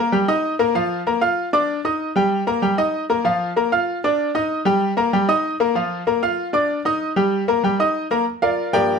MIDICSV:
0, 0, Header, 1, 2, 480
1, 0, Start_track
1, 0, Tempo, 313152
1, 1147, Time_signature, 4, 2, 24, 8
1, 13780, End_track
2, 0, Start_track
2, 0, Title_t, "Grand piano"
2, 0, Program_c, 0, 0
2, 0, Note_on_c, 0, 70, 82
2, 0, Note_on_c, 0, 82, 81
2, 155, Note_off_c, 0, 70, 0
2, 157, Note_off_c, 0, 82, 0
2, 188, Note_on_c, 0, 55, 78
2, 190, Note_on_c, 0, 67, 72
2, 194, Note_on_c, 0, 79, 73
2, 385, Note_off_c, 0, 55, 0
2, 386, Note_off_c, 0, 67, 0
2, 389, Note_off_c, 0, 79, 0
2, 434, Note_on_c, 0, 63, 85
2, 435, Note_on_c, 0, 75, 84
2, 439, Note_on_c, 0, 87, 81
2, 824, Note_off_c, 0, 63, 0
2, 825, Note_off_c, 0, 75, 0
2, 828, Note_off_c, 0, 87, 0
2, 908, Note_on_c, 0, 58, 88
2, 913, Note_on_c, 0, 70, 84
2, 920, Note_on_c, 0, 82, 83
2, 1104, Note_off_c, 0, 58, 0
2, 1107, Note_off_c, 0, 70, 0
2, 1111, Note_off_c, 0, 82, 0
2, 1149, Note_on_c, 0, 53, 80
2, 1153, Note_on_c, 0, 65, 88
2, 1155, Note_on_c, 0, 77, 91
2, 1540, Note_off_c, 0, 53, 0
2, 1543, Note_off_c, 0, 65, 0
2, 1544, Note_off_c, 0, 77, 0
2, 1635, Note_on_c, 0, 58, 72
2, 1636, Note_on_c, 0, 70, 77
2, 1643, Note_on_c, 0, 82, 77
2, 1828, Note_off_c, 0, 58, 0
2, 1828, Note_off_c, 0, 70, 0
2, 1832, Note_off_c, 0, 82, 0
2, 1860, Note_on_c, 0, 65, 82
2, 1863, Note_on_c, 0, 77, 77
2, 1870, Note_on_c, 0, 89, 81
2, 2254, Note_off_c, 0, 65, 0
2, 2256, Note_off_c, 0, 77, 0
2, 2261, Note_off_c, 0, 89, 0
2, 2346, Note_on_c, 0, 62, 87
2, 2348, Note_on_c, 0, 74, 83
2, 2354, Note_on_c, 0, 86, 88
2, 2738, Note_off_c, 0, 62, 0
2, 2739, Note_off_c, 0, 74, 0
2, 2742, Note_off_c, 0, 86, 0
2, 2831, Note_on_c, 0, 63, 75
2, 2834, Note_on_c, 0, 75, 75
2, 2837, Note_on_c, 0, 87, 81
2, 3220, Note_off_c, 0, 63, 0
2, 3222, Note_off_c, 0, 75, 0
2, 3224, Note_off_c, 0, 87, 0
2, 3305, Note_on_c, 0, 55, 74
2, 3311, Note_on_c, 0, 67, 73
2, 3317, Note_on_c, 0, 79, 81
2, 3696, Note_off_c, 0, 55, 0
2, 3700, Note_off_c, 0, 67, 0
2, 3704, Note_off_c, 0, 79, 0
2, 3785, Note_on_c, 0, 58, 74
2, 3788, Note_on_c, 0, 70, 76
2, 3793, Note_on_c, 0, 82, 81
2, 3980, Note_off_c, 0, 58, 0
2, 3982, Note_off_c, 0, 70, 0
2, 3985, Note_off_c, 0, 82, 0
2, 4017, Note_on_c, 0, 55, 71
2, 4023, Note_on_c, 0, 67, 70
2, 4025, Note_on_c, 0, 79, 73
2, 4215, Note_off_c, 0, 55, 0
2, 4218, Note_off_c, 0, 67, 0
2, 4220, Note_off_c, 0, 79, 0
2, 4261, Note_on_c, 0, 63, 80
2, 4265, Note_on_c, 0, 75, 84
2, 4267, Note_on_c, 0, 87, 81
2, 4654, Note_off_c, 0, 63, 0
2, 4656, Note_off_c, 0, 75, 0
2, 4657, Note_off_c, 0, 87, 0
2, 4746, Note_on_c, 0, 58, 75
2, 4749, Note_on_c, 0, 70, 79
2, 4755, Note_on_c, 0, 82, 78
2, 4940, Note_off_c, 0, 58, 0
2, 4942, Note_off_c, 0, 70, 0
2, 4945, Note_off_c, 0, 82, 0
2, 4975, Note_on_c, 0, 53, 77
2, 4980, Note_on_c, 0, 65, 89
2, 4988, Note_on_c, 0, 77, 82
2, 5370, Note_off_c, 0, 53, 0
2, 5373, Note_off_c, 0, 65, 0
2, 5378, Note_off_c, 0, 77, 0
2, 5463, Note_on_c, 0, 58, 72
2, 5469, Note_on_c, 0, 70, 74
2, 5474, Note_on_c, 0, 82, 75
2, 5658, Note_off_c, 0, 58, 0
2, 5662, Note_off_c, 0, 70, 0
2, 5664, Note_off_c, 0, 82, 0
2, 5703, Note_on_c, 0, 65, 80
2, 5706, Note_on_c, 0, 77, 80
2, 5712, Note_on_c, 0, 89, 84
2, 6095, Note_off_c, 0, 65, 0
2, 6097, Note_off_c, 0, 77, 0
2, 6100, Note_off_c, 0, 89, 0
2, 6194, Note_on_c, 0, 62, 87
2, 6197, Note_on_c, 0, 74, 81
2, 6200, Note_on_c, 0, 86, 76
2, 6582, Note_off_c, 0, 62, 0
2, 6583, Note_off_c, 0, 74, 0
2, 6585, Note_off_c, 0, 86, 0
2, 6664, Note_on_c, 0, 63, 85
2, 6667, Note_on_c, 0, 75, 77
2, 6672, Note_on_c, 0, 87, 82
2, 7056, Note_off_c, 0, 63, 0
2, 7058, Note_off_c, 0, 75, 0
2, 7060, Note_off_c, 0, 87, 0
2, 7131, Note_on_c, 0, 55, 80
2, 7137, Note_on_c, 0, 67, 82
2, 7145, Note_on_c, 0, 79, 79
2, 7528, Note_off_c, 0, 55, 0
2, 7532, Note_off_c, 0, 67, 0
2, 7536, Note_off_c, 0, 79, 0
2, 7616, Note_on_c, 0, 58, 80
2, 7620, Note_on_c, 0, 70, 77
2, 7627, Note_on_c, 0, 82, 80
2, 7815, Note_off_c, 0, 58, 0
2, 7817, Note_off_c, 0, 70, 0
2, 7821, Note_off_c, 0, 82, 0
2, 7866, Note_on_c, 0, 55, 78
2, 7869, Note_on_c, 0, 79, 75
2, 7870, Note_on_c, 0, 67, 70
2, 8060, Note_off_c, 0, 55, 0
2, 8062, Note_off_c, 0, 79, 0
2, 8063, Note_off_c, 0, 67, 0
2, 8102, Note_on_c, 0, 63, 84
2, 8104, Note_on_c, 0, 75, 82
2, 8110, Note_on_c, 0, 87, 86
2, 8495, Note_off_c, 0, 63, 0
2, 8496, Note_off_c, 0, 75, 0
2, 8500, Note_off_c, 0, 87, 0
2, 8585, Note_on_c, 0, 58, 87
2, 8590, Note_on_c, 0, 70, 76
2, 8597, Note_on_c, 0, 82, 80
2, 8780, Note_off_c, 0, 58, 0
2, 8783, Note_off_c, 0, 70, 0
2, 8787, Note_off_c, 0, 82, 0
2, 8817, Note_on_c, 0, 53, 83
2, 8822, Note_on_c, 0, 65, 81
2, 8829, Note_on_c, 0, 77, 82
2, 9213, Note_off_c, 0, 53, 0
2, 9216, Note_off_c, 0, 65, 0
2, 9220, Note_off_c, 0, 77, 0
2, 9302, Note_on_c, 0, 58, 73
2, 9307, Note_on_c, 0, 70, 76
2, 9307, Note_on_c, 0, 82, 70
2, 9499, Note_off_c, 0, 58, 0
2, 9502, Note_off_c, 0, 70, 0
2, 9502, Note_off_c, 0, 82, 0
2, 9543, Note_on_c, 0, 65, 85
2, 9550, Note_on_c, 0, 77, 82
2, 9550, Note_on_c, 0, 89, 79
2, 9937, Note_off_c, 0, 65, 0
2, 9941, Note_off_c, 0, 77, 0
2, 9941, Note_off_c, 0, 89, 0
2, 10011, Note_on_c, 0, 62, 77
2, 10020, Note_on_c, 0, 74, 85
2, 10025, Note_on_c, 0, 86, 86
2, 10410, Note_off_c, 0, 62, 0
2, 10416, Note_off_c, 0, 74, 0
2, 10419, Note_off_c, 0, 86, 0
2, 10503, Note_on_c, 0, 63, 84
2, 10511, Note_on_c, 0, 75, 78
2, 10514, Note_on_c, 0, 87, 86
2, 10898, Note_off_c, 0, 63, 0
2, 10902, Note_off_c, 0, 75, 0
2, 10904, Note_off_c, 0, 87, 0
2, 10979, Note_on_c, 0, 55, 75
2, 10981, Note_on_c, 0, 67, 78
2, 10988, Note_on_c, 0, 79, 72
2, 11376, Note_off_c, 0, 55, 0
2, 11377, Note_off_c, 0, 67, 0
2, 11381, Note_off_c, 0, 79, 0
2, 11466, Note_on_c, 0, 58, 76
2, 11471, Note_on_c, 0, 70, 85
2, 11473, Note_on_c, 0, 82, 75
2, 11663, Note_off_c, 0, 58, 0
2, 11666, Note_off_c, 0, 70, 0
2, 11667, Note_off_c, 0, 82, 0
2, 11703, Note_on_c, 0, 55, 74
2, 11713, Note_on_c, 0, 67, 69
2, 11716, Note_on_c, 0, 79, 73
2, 11902, Note_off_c, 0, 55, 0
2, 11907, Note_off_c, 0, 67, 0
2, 11909, Note_off_c, 0, 79, 0
2, 11950, Note_on_c, 0, 63, 78
2, 11954, Note_on_c, 0, 75, 85
2, 11958, Note_on_c, 0, 87, 80
2, 12344, Note_off_c, 0, 63, 0
2, 12346, Note_off_c, 0, 75, 0
2, 12348, Note_off_c, 0, 87, 0
2, 12429, Note_on_c, 0, 58, 79
2, 12429, Note_on_c, 0, 70, 75
2, 12437, Note_on_c, 0, 82, 86
2, 12626, Note_off_c, 0, 58, 0
2, 12626, Note_off_c, 0, 70, 0
2, 12631, Note_off_c, 0, 82, 0
2, 12909, Note_on_c, 0, 77, 94
2, 12916, Note_on_c, 0, 70, 71
2, 12916, Note_on_c, 0, 74, 69
2, 12917, Note_on_c, 0, 65, 73
2, 13357, Note_off_c, 0, 77, 0
2, 13361, Note_off_c, 0, 65, 0
2, 13361, Note_off_c, 0, 70, 0
2, 13361, Note_off_c, 0, 74, 0
2, 13380, Note_on_c, 0, 43, 52
2, 13386, Note_on_c, 0, 53, 51
2, 13387, Note_on_c, 0, 79, 99
2, 13392, Note_on_c, 0, 67, 81
2, 13394, Note_on_c, 0, 58, 61
2, 13395, Note_on_c, 0, 70, 82
2, 13395, Note_on_c, 0, 74, 84
2, 13706, Note_off_c, 0, 43, 0
2, 13709, Note_off_c, 0, 53, 0
2, 13713, Note_off_c, 0, 58, 0
2, 13780, Note_off_c, 0, 67, 0
2, 13780, Note_off_c, 0, 70, 0
2, 13780, Note_off_c, 0, 74, 0
2, 13780, Note_off_c, 0, 79, 0
2, 13780, End_track
0, 0, End_of_file